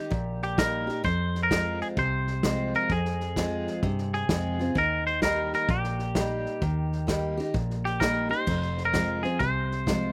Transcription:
Already playing: D#4 G4
0.10 A#1 A#2, kick, snare
0.42 G4, snare
0.58 G3 A#3 D#4 G4 A#4, kick, snare, hi-hat pedal
0.87 D#4 G4, snare
1.04 F2 C5, kick, snare
1.35 snare
1.43 A#4
1.51 F3 G#3 C4 F4, kick, snare, hi-hat pedal
1.81 G#4, snare
1.97 C2 C3 C5, kick, snare
2.27 snare
2.43 F3 G#3 C4 F4, kick, snare, hi-hat pedal
2.73 A#4, snare
2.89 F2 G#4, kick, snare
3.05 snare
3.20 snare
3.36 F3 G#3 C4 F4, kick, snare, hi-hat pedal
3.67 snare
3.83 G2 C3, kick, snare
3.98 snare
4.13 G#4, snare
4.29 F2 F3 G#3 C4 F4, kick, snare, hi-hat pedal
4.59 C4 F4, snare
4.75 D#2 D#3 A#4, kick, snare
5.06 C5, snare
5.22 G3 A#3 D#4 G4 A#4, kick, snare, hi-hat pedal
5.53 A#4, snare
5.69 A#1 A#2 G4, kick, snare
5.84 snare
5.99 snare
6.15 G3 A#3 D#4 G4, kick, snare, hi-hat pedal
6.46 snare
6.62 D#2 D#3, kick, snare
6.92 snare
7.07 G3 A#3 D#4 G4, kick, snare, hi-hat pedal
7.37 D#4 G4, snare
7.54 A#1 A#2, kick, snare
7.70 snare
7.85 G4, snare
8.00 G3 A#3 D#4 G4 A#4, kick, snare, hi-hat pedal
8.29 D#4 G4 C5, snare
8.47 F1 F2, kick, snare, crash
8.62 snare
8.77 snare
8.85 A#4
8.93 F3 G#3 C4 F4, kick, snare, hi-hat pedal
9.23 C4 F4 G#4, snare
9.39 C2 C3 C5, kick, snare
9.71 snare
9.86 F3 G#3 C4 F4, kick, snare, hi-hat pedal

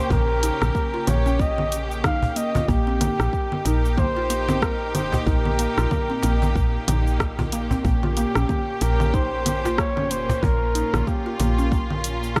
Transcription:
Already playing: C#3 A#3 C#4 G4 C5
0.10 A#1 A#4, kick, cajon bass, low conga, cabasa
0.43 D#4, closed hi-hat, cabasa
0.62 A#1, cross-stick, low conga, cabasa
0.75 A#3, kick, cabasa
0.94 F4
1.07 A#1 A#3 C#5, cajon slap, closed hi-hat, low conga, cabasa
1.26 C#4, cabasa
1.39 A#3 D#5, kick, cabasa
1.58 low conga
1.72 closed hi-hat, cabasa
1.91 cabasa
2.04 D#4 F5, kick, cross-stick, cajon slap, low conga, cabasa
2.23 cajon bass
2.36 A#3 D#5, closed hi-hat, cabasa
2.55 F4, cajon bass, low conga, cabasa
2.68 A#1 A#2 A#3 D#4 G4, kick, cajon bass, cabasa
2.87 C4
3.01 A#3, cajon slap, closed hi-hat, low conga, cabasa
3.20 A#1, cross-stick, cabasa
3.33 kick, cabasa
3.52 low conga
3.65 A#1 D#4 A#4, cajon slap, closed hi-hat, cabasa
3.85 cabasa
3.98 A#3 C5, kick, low conga, cabasa
4.16 F4
4.30 A#3, closed hi-hat, cabasa
4.48 C4, cajon slap, low conga, cabasa
4.62 A#3 A#4, kick, cross-stick, cabasa
4.95 F1 C5, closed hi-hat, low conga, cabasa
5.12 cajon bass, cajon slap, cabasa
5.21 C5
5.27 A#1 D#4 A#4, kick, cajon bass, cabasa
5.45 low conga
5.58 A#3, cajon slap, closed hi-hat, cabasa
5.78 A#1 F4, cross-stick, cabasa
5.91 A#3, kick, low conga, cabasa
6.10 C4
6.22 A#1 A#3, cajon slap, closed hi-hat, cabasa
6.42 low conga, cabasa
6.56 A#1, kick, cabasa
6.88 A#1 D#4, closed hi-hat, low conga, cabasa
7.07 cabasa
7.20 A#3, kick, cross-stick, cajon slap, cabasa
7.39 F4, cajon bass, low conga
7.52 A#3, closed hi-hat, cabasa
7.71 C4, cajon bass, cabasa
7.85 A#1 A#3 C#4 G4, cajon bass, kick, cabasa
8.03 F4, low conga
8.17 A#3, cajon slap, closed hi-hat, cabasa
8.35 A#1 C#4, cross-stick, cabasa
8.49 A#3, kick, low conga, cabasa
8.81 A#1 A#4, cajon slap, closed hi-hat, cabasa
9.00 low conga, cabasa
9.14 D#4 C5, kick, cabasa
9.46 A#3, closed hi-hat, low conga, cabasa
9.65 F4, cajon slap, cabasa
9.78 A#3 C#5, kick, cross-stick, cabasa
9.97 C#4, low conga
10.10 F1 A#3 C5, closed hi-hat, cabasa
10.29 cajon bass, cajon slap, cabasa
10.43 A#1 F4 A#4, kick, cajon bass, low conga, cabasa
10.75 D#4, closed hi-hat, cabasa
10.94 A#1, cross-stick, low conga, cabasa
11.07 A#3 G4, kick, cabasa
11.26 F4
11.39 A#1 A#3, cajon slap, closed hi-hat, low conga, cabasa
11.58 C#4, cabasa
11.72 A#3, kick, cabasa
11.90 low conga
12.04 closed hi-hat, cabasa
12.23 cabasa
12.36 D#4, kick, cross-stick, cajon slap, low conga, cabasa

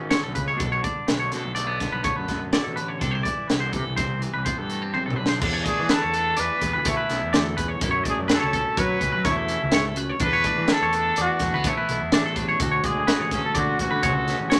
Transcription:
Already playing: G#1 B3 C#4 E4
0.10 D3 C#5, snare, closed hi-hat
0.23 B1 A4
0.33 C#2 C#3 B4, kick, closed hi-hat
0.48 C#5
0.56 B2 D4, kick, closed hi-hat
0.60 B1 A4
0.72 C#5
0.82 D3 D5, kick, closed hi-hat
1.07 B1 A3 B4, snare, closed hi-hat
1.20 C#5
1.31 B2 D3 A4, snare, closed hi-hat
1.44 B1
1.55 A3 D5, closed hi-hat
1.67 B3
1.80 D3, kick, snare, closed hi-hat
1.92 B1 B4
2.03 A3 C#5, kick, closed hi-hat
2.16 F#2 B4
2.28 B3, kick, snare, closed hi-hat
2.52 B2 E4 D5, snare, closed hi-hat
2.64 A1 A4
2.75 A1 D3 B4, closed hi-hat
2.88 C#5
2.99 C2 C3 D4 A4, kick, closed hi-hat
3.11 E4 C5
3.23 E3 D5, kick, closed hi-hat
3.48 C2 B3 B4, snare, closed hi-hat
3.60 C5
3.72 C3 E3 A4, kick, closed hi-hat
3.87 C2
3.96 C4 C5, kick, snare, closed hi-hat
4.21 E3, closed hi-hat
4.34 C2 B4
4.45 B3 C5, kick, closed hi-hat
4.58 G2 A4
4.70 A3, closed hi-hat
4.82 C4
4.94 C3 C5, high tom
5.06 B1 A4
5.10 mid tom
5.16 B1 D3 B4
5.26 C5, snare
5.40 E2 D4 A4, kick, crash
5.53 C#5
5.64 A3 G#4 D5, kick, closed hi-hat
5.79 E3
5.89 D4 A4 B4, snare, closed hi-hat
6.02 E2 C#5
6.14 B3 A4, closed hi-hat
6.37 E2 E3 B4 D5, closed hi-hat
6.61 E2 B3, kick, closed hi-hat
6.73 D2 B4
6.85 A3 E4 C#5, kick, closed hi-hat
6.97 B4
7.10 B1 B3, snare, closed hi-hat
7.23 E2
7.33 D2 E2 D5, snare, closed hi-hat
7.44 A4
7.57 E2 B4, kick, closed hi-hat
7.68 C#5
7.80 F#2 A4, kick, closed hi-hat
7.84 E4
7.91 C#5
8.04 D5, kick, closed hi-hat
8.08 A3 G#4
8.19 F#2
8.28 D4 B4, snare, closed hi-hat
8.35 A4
8.40 C#2 E4 C#5
8.53 C#4 A4, kick, closed hi-hat
8.77 F#3 B4 C#5, kick, closed hi-hat
9.01 C#2 C#4, kick, closed hi-hat
9.12 F#3 B4
9.25 E2 A3 E4 C#5, kick, snare, closed hi-hat
9.37 A4
9.48 C#4, closed hi-hat
9.63 C#2
9.72 G#2 C#5, snare, closed hi-hat
9.85 A4
9.96 F#2 B4, closed hi-hat
10.10 C#5
10.20 E2 D4 A4 B4, kick, closed hi-hat
10.33 C#5
10.44 A3 D5, kick, closed hi-hat
10.58 E3
10.68 D4 B4, snare, closed hi-hat
10.72 A4
10.81 E2 C#5
10.93 B3 A4, closed hi-hat
11.16 E2 E3 D5, closed hi-hat
11.22 F#4
11.39 E2 A3, kick, snare, closed hi-hat
11.53 D2 B3 B4
11.64 A3 C#5, kick, closed hi-hat
11.69 E4
11.77 B4
11.89 B1 B3, closed hi-hat
12.02 E2
12.12 A1 E2 D4 D5, snare, closed hi-hat
12.26 A4
12.36 A3 B4, kick, closed hi-hat
12.49 C#5
12.60 D2 F#4 A4, kick, closed hi-hat
12.71 C#5
12.84 G#3 G#4 D5, kick, closed hi-hat
12.96 D2
13.07 F#4 B4, snare, closed hi-hat
13.19 A1 C#5
13.31 C#4 A4, kick, snare, closed hi-hat
13.45 A4
13.55 D3 F#4 D5, kick, closed hi-hat
13.79 A1 C#4 F#4, kick, closed hi-hat
13.91 D3 B4
14.03 C#2 G#3 C#5, kick, closed hi-hat
14.13 A4
14.28 C#4, snare, closed hi-hat
14.39 A1
14.50 D2 C#4 C#5, snare, closed hi-hat

